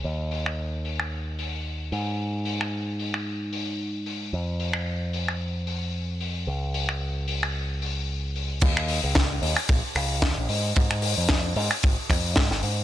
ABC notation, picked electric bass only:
X:1
M:4/4
L:1/16
Q:"Swing 16ths" 1/4=112
K:Ebmix
V:1 name="Picked electric bass" clef=bass
E,,12- E,,2 A,,2- | A,,16 | F,,16 | D,,16 |
E,,3 D,,3 E,, z B,,, z D,,2 E,, B,,, A,,2 | A,,3 F,,3 A,, z A,,, z F,,2 A,, A,,, A,,2 |]